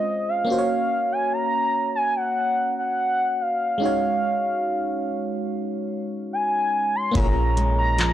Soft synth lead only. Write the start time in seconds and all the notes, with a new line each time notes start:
Already playing: D#5
0.29 F5
0.50 F5
1.12 G#5
1.33 A#5
1.95 G#5
2.16 F#5
2.79 F#5
3.41 F5
6.33 G#5
6.95 C6
7.16 A#5
7.79 A#5